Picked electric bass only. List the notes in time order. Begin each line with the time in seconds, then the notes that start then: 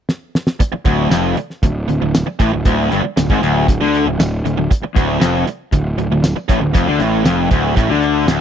0.60 muted picked electric bass stroke
0.73 muted picked electric bass stroke
0.85 D1
1.10 F1
1.37 muted picked electric bass stroke
1.63 D1
1.88 D1
2.02 D1
2.26 muted picked electric bass stroke
2.40 A1
2.53 D1
2.65 D1
2.91 G1
3.03 muted picked electric bass stroke
3.17 D1
3.30 G#1
3.42 D1
3.68 D1
3.80 D2
4.06 D1
4.19 D1
4.44 D1
4.57 D1
4.71 muted picked electric bass stroke
4.82 muted picked electric bass stroke
4.96 D1
5.21 F1
5.46 muted picked electric bass stroke
5.72 D1
5.98 D1
6.10 D1
6.36 muted picked electric bass stroke
6.49 A1
6.62 D1
6.75 F1
6.86 D2
6.99 A1
7.25 F1
7.51 D1
7.77 A1
7.89 D2
8.27 D1